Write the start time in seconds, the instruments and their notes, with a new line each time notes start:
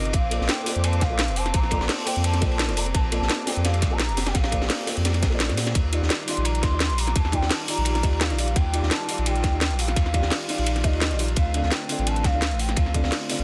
Already playing: sub bass G1, felt piano C3 C4 D#4 F4 A#4 D#5, soft synth lead D#5, string section D6
0.05 closed hi-hat
0.13 sub bass A#1, string section C4 C5, soft synth lead F5, kick, closed hi-hat, ride
0.30 felt piano A#3 F4 A4 C5 D5, closed hi-hat, ride
0.41 sub bass A#1, snare
0.49 soft synth lead G5, snare, closed hi-hat, ride
0.58 ride
0.64 felt piano A#3 F4 A4 C5, snare, open hi-hat, ride
0.69 felt piano D5
0.76 sub bass F2, closed hi-hat
0.84 soft synth lead A5, closed hi-hat, ride
0.93 closed hi-hat
1.01 sub bass A#1, soft synth lead F5, kick, snare, closed hi-hat, ride
1.10 felt piano A#3 F4 A4 C5 D5
1.19 snare, closed hi-hat, ride
1.28 sub bass F1, closed hi-hat
1.36 soft synth lead A5, open hi-hat, ride
1.46 snare, closed hi-hat
1.54 sub bass A#1, soft synth lead A#5, kick, closed hi-hat, ride
1.63 snare
1.71 felt piano A#3 F4 A4 C5 D5, kick, closed hi-hat, ride
1.81 sub bass A#1, snare
1.89 soft synth lead A5, snare, closed hi-hat, open hi-hat
1.99 snare
2.06 felt piano A#3 F4 A4 C5 D5, soft synth lead G5, open hi-hat, ride
2.16 sub bass F2, closed hi-hat
2.24 soft synth lead A5, closed hi-hat, ride
2.34 snare, closed hi-hat
2.41 sub bass A#1, felt piano A#3 F4 A4 C5 D5, kick, closed hi-hat, ride
2.52 ride
2.59 snare, closed hi-hat, ride
2.68 sub bass F1, felt piano A#3 F4 A4 C5 D5, snare, closed hi-hat
2.76 felt piano A#3 F4 A4 C5 D5, soft synth lead A#5, open hi-hat, ride
2.86 closed hi-hat
2.94 sub bass A#1, string section G4, soft synth lead A5, kick, closed hi-hat, ride
3.11 felt piano A#3 F4 A4 C5 D5, closed hi-hat, ride
3.21 sub bass A#1, snare
3.29 snare, closed hi-hat, ride
3.39 ride
3.45 felt piano A#3 F4 A4 C5, soft synth lead G5, snare, open hi-hat, ride
3.50 felt piano D5
3.56 sub bass F2, closed hi-hat
3.65 soft synth lead F5, snare, closed hi-hat, ride
3.74 closed hi-hat
3.82 sub bass A#1, kick, snare, closed hi-hat, ride
3.90 felt piano A#3 F4 A4 C5 D5, soft synth lead A#5
4.00 snare, closed hi-hat, ride
4.09 sub bass F1, closed hi-hat
4.17 snare, open hi-hat, ride
4.26 soft synth lead G5, snare, closed hi-hat, ride
4.34 sub bass A#1, soft synth lead F5, kick, snare, closed hi-hat, ride
4.44 snare, ride
4.51 felt piano A#3 F4 A4 C5 D5, kick, closed hi-hat, ride
4.62 sub bass A#1, snare
4.69 snare, closed hi-hat, open hi-hat
4.80 snare
4.86 felt piano A#3 F4 A4 C5 D5, snare, open hi-hat, ride
4.97 sub bass F2, closed hi-hat
5.05 snare, closed hi-hat, ride
5.14 snare, closed hi-hat, ride
5.23 sub bass A#1, kick, snare, closed hi-hat, ride
5.30 felt piano A#3 F4 A4 C5, ride
5.34 felt piano D5
5.40 snare, closed hi-hat, ride
5.49 sub bass A#2, snare, closed hi-hat
5.57 snare, open hi-hat, ride
5.66 snare, closed hi-hat, ride
5.75 sub bass D#2, string section G3 F4 D6, kick, closed hi-hat, ride
5.92 felt piano D#3 D#4 F4 G4 D5, closed hi-hat, ride
6.02 sub bass D#2, snare
6.10 snare, closed hi-hat, ride
6.20 ride
6.25 felt piano D#3 D#4 F4 G4, soft synth lead C6, snare, open hi-hat, ride
6.30 felt piano D5
6.37 sub bass A#1, closed hi-hat
6.45 soft synth lead A#5, closed hi-hat, ride
6.55 closed hi-hat
6.63 sub bass D#2, soft synth lead C6, kick, snare, closed hi-hat, ride
6.71 felt piano D#3 D#4 F4 G4 D5
6.80 snare, closed hi-hat, ride
6.90 sub bass A#1, closed hi-hat
6.98 soft synth lead A#5, open hi-hat, ride
7.07 snare, closed hi-hat
7.16 sub bass D#2, soft synth lead A5, kick, closed hi-hat, ride
7.25 snare
7.32 felt piano D#3 D#4 F4 G4 D5, soft synth lead G5, kick, closed hi-hat, ride
7.42 sub bass D#2, snare
7.50 soft synth lead A5, snare, closed hi-hat, open hi-hat
7.60 snare
7.67 felt piano D#3 D#4 F4 G4 D5, soft synth lead A#5, open hi-hat, ride
7.77 sub bass A#1, closed hi-hat
7.85 closed hi-hat, ride
7.95 snare, closed hi-hat
8.02 sub bass D#2, felt piano D#3 D#4 F4 G4 D5, kick, closed hi-hat, ride
8.13 ride
8.21 soft synth lead F5, snare, closed hi-hat, ride
8.29 sub bass A#1, felt piano D#3 D#4 F4 G4 D5, snare, closed hi-hat
8.37 felt piano D#3 D#4 F4 G4 D5, open hi-hat, ride
8.48 closed hi-hat
8.56 sub bass D#2, soft synth lead G5, kick, closed hi-hat, ride
8.72 felt piano D#3 D#4 F4 G4 D5, closed hi-hat, ride
8.83 sub bass D#2, snare
8.91 soft synth lead A5, snare, closed hi-hat, ride
9.01 ride
9.06 felt piano D#3 D#4 F4 G4, open hi-hat, ride
9.11 felt piano D5
9.18 sub bass A#1, closed hi-hat
9.26 soft synth lead G5, closed hi-hat, ride
9.36 closed hi-hat
9.44 sub bass D#2, kick, snare, closed hi-hat, ride
9.52 felt piano D#3 D#4 F4 G4 D5
9.61 snare, closed hi-hat, ride
9.71 sub bass A#1, closed hi-hat
9.79 soft synth lead F5, open hi-hat, ride
9.88 snare, closed hi-hat
9.96 sub bass D#2, kick, closed hi-hat, ride
10.06 snare
10.13 felt piano D#3 D#4 F4 G4 D5, kick, closed hi-hat, ride
10.22 sub bass D#2, snare
10.31 snare, closed hi-hat, open hi-hat
10.41 snare
10.48 felt piano D#3 D#4 F4 G4 D5, snare, open hi-hat, ride
10.58 sub bass A#1, closed hi-hat
10.66 closed hi-hat, ride
10.76 snare, closed hi-hat
10.83 sub bass D#2, felt piano D#3 D#4 F4 G4 D5, soft synth lead D#5, kick, closed hi-hat, ride
10.93 ride
11.01 snare, closed hi-hat, ride
11.10 sub bass A#1, felt piano D#3 D#4 F4 G4 D5, snare, closed hi-hat
11.18 felt piano D#3 D#4 F4 G4 D5, open hi-hat, ride
11.28 closed hi-hat
11.36 sub bass D2, string section A3 C4, soft synth lead F5, kick, closed hi-hat, ride
11.53 felt piano D3 C4 F4 A4 D5, closed hi-hat, ride
11.63 sub bass D2, snare
11.71 soft synth lead G5, snare, closed hi-hat, ride
11.81 ride
11.87 felt piano D3 C4 F4 A4, open hi-hat, ride
11.92 felt piano D5
11.98 sub bass A1, closed hi-hat
12.07 soft synth lead A5, closed hi-hat, ride
12.16 closed hi-hat
12.24 sub bass D2, soft synth lead F5, kick, snare, closed hi-hat, ride
12.33 felt piano D3 C4 F4 A4 D5
12.42 snare, closed hi-hat, ride
12.51 sub bass A1, closed hi-hat
12.59 soft synth lead G5, open hi-hat, ride
12.69 snare, closed hi-hat
12.76 sub bass D2, soft synth lead F5, kick, closed hi-hat, ride
12.86 snare
12.93 felt piano D3 C4 F4 A4 D5, kick, closed hi-hat, ride
13.04 sub bass D2, snare
13.12 snare, closed hi-hat, open hi-hat
13.21 snare
13.29 felt piano D3 C4 F4 A4 D5, snare, open hi-hat, ride
13.39 sub bass A1